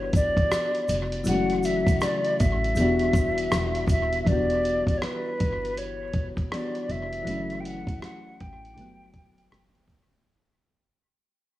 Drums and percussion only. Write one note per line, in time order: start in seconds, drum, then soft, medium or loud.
0.13 kick medium
0.13 closed hi-hat medium
0.13 shaker medium
0.37 kick medium
0.37 closed hi-hat medium
0.52 cross-stick loud
0.52 closed hi-hat medium
0.52 shaker medium
0.75 closed hi-hat soft
0.88 closed hi-hat medium
0.88 shaker medium
1.12 closed hi-hat soft
1.24 closed hi-hat medium
1.24 shaker medium
1.50 closed hi-hat soft
1.63 closed hi-hat medium
1.63 shaker soft
1.87 kick medium
1.87 closed hi-hat medium
1.87 shaker soft
2.01 cross-stick medium
2.01 closed hi-hat medium
2.01 shaker medium
2.24 closed hi-hat soft
2.40 kick medium
2.40 closed hi-hat medium
2.40 shaker soft
2.64 closed hi-hat soft
2.75 closed hi-hat medium
2.75 shaker medium
2.99 closed hi-hat soft
3.13 kick medium
3.13 cross-stick soft
3.13 closed hi-hat medium
3.13 shaker medium
3.38 closed hi-hat soft
3.52 cross-stick loud
3.52 closed hi-hat loud
3.52 shaker medium
3.75 closed hi-hat soft
3.87 kick medium
3.87 closed hi-hat medium
3.87 shaker medium
4.13 closed hi-hat soft
4.26 kick loud
4.26 closed hi-hat medium
4.50 closed hi-hat soft
4.65 closed hi-hat medium
4.87 kick medium
4.87 closed hi-hat soft
5.02 cross-stick medium
5.02 closed hi-hat medium
5.40 kick medium
5.40 closed hi-hat medium
5.65 closed hi-hat soft
5.77 closed hi-hat medium
6.13 kick medium
6.13 closed hi-hat medium
6.37 kick medium
6.37 closed hi-hat soft
6.52 cross-stick loud
6.52 closed hi-hat medium
6.75 closed hi-hat soft
6.90 closed hi-hat medium
7.13 closed hi-hat soft
7.27 closed hi-hat medium
7.50 closed hi-hat soft
7.65 closed hi-hat medium
7.87 kick medium
7.87 closed hi-hat soft
8.02 cross-stick medium
8.02 closed hi-hat medium
8.40 kick medium
8.40 closed hi-hat medium
8.65 closed hi-hat soft
8.78 closed hi-hat medium
9.14 kick medium
9.14 closed hi-hat medium
9.38 closed hi-hat soft
9.52 cross-stick loud
9.52 closed hi-hat medium
9.75 closed hi-hat soft
9.88 kick medium
9.88 closed hi-hat medium
10.13 closed hi-hat soft